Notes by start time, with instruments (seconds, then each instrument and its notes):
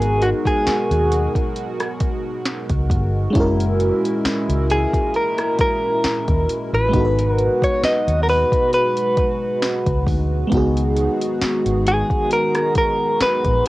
Already playing: fingered electric bass G#1, analog synth pad B2 G#3 F#4, fm electric piano G#3 B3 D#4 F#4 A#4, clean electric guitar G#4
0.02 closed hi-hat
0.22 clean electric guitar F#4, closed hi-hat
0.45 clean electric guitar G#4, kick, closed hi-hat
0.67 muted fingered electric bass stroke, snare, closed hi-hat
0.91 fingered electric bass D#2, closed hi-hat
1.12 closed hi-hat
1.35 kick, closed hi-hat
1.56 closed hi-hat
1.80 cross-stick, closed hi-hat
2.00 kick, closed hi-hat
2.46 snare, closed hi-hat
2.70 fingered electric bass C#2, kick, closed hi-hat
2.90 fingered electric bass G1, kick, closed hi-hat
3.30 fm electric piano G#3 C#4
3.35 fingered electric bass F#1, analog synth pad A#2 G#3 E4, fm electric piano E4 F#4, kick, closed hi-hat
3.40 fm electric piano A#4
3.60 closed hi-hat
3.80 closed hi-hat
4.05 closed hi-hat
4.25 muted fingered electric bass stroke, snare, closed hi-hat
4.49 fingered electric bass C#2, closed hi-hat
4.70 clean electric guitar G#4, closed hi-hat
4.93 kick, closed hi-hat
5.14 clean electric guitar A#4, closed hi-hat
5.38 cross-stick, closed hi-hat
5.59 clean electric guitar A#4, kick, closed hi-hat
6.04 muted fingered electric bass stroke, snare, closed hi-hat
6.28 fingered electric bass D#2, kick, closed hi-hat
6.49 closed hi-hat
6.73 fingered electric bass A1, clean electric guitar B4
6.89 fm electric piano G#3 B3
6.93 fingered electric bass G#1, analog synth pad B2 G#3 F#4, fm electric piano D#4 F#4, kick, closed hi-hat
6.98 fm electric piano A4
7.05 fm electric piano B4
7.19 closed hi-hat
7.31 clean electric guitar A#4
7.38 closed hi-hat
7.62 clean electric guitar C#5, kick, closed hi-hat
7.83 clean electric guitar D#5, muted fingered electric bass stroke, snare, closed hi-hat
8.08 fingered electric bass D#2, closed hi-hat
8.23 clean electric guitar A#4
8.29 clean electric guitar B4, open hi-hat
8.52 kick, closed hi-hat
8.73 clean electric guitar B4, closed hi-hat
8.97 closed hi-hat
9.17 kick, closed hi-hat
9.62 snare, closed hi-hat
9.86 fingered electric bass C#2, kick, closed hi-hat
10.07 fingered electric bass D2, kick, open hi-hat
10.47 fm electric piano G#3 B3
10.52 fingered electric bass C#2, analog synth pad D#3 B3 F#4, fm electric piano D#4 F#4, kick, closed hi-hat
10.57 fm electric piano G#4
10.77 closed hi-hat
10.97 closed hi-hat
11.21 closed hi-hat
11.42 muted fingered electric bass stroke, snare, closed hi-hat
11.66 fingered electric bass G#1, closed hi-hat
11.87 clean electric guitar G#4, closed hi-hat
12.10 kick, closed hi-hat
12.31 clean electric guitar A#4, closed hi-hat
12.55 cross-stick, closed hi-hat
12.75 clean electric guitar A#4, kick, closed hi-hat
13.20 clean electric guitar B4, muted fingered electric bass stroke, snare, closed hi-hat
13.44 fingered electric bass A#1, kick, closed hi-hat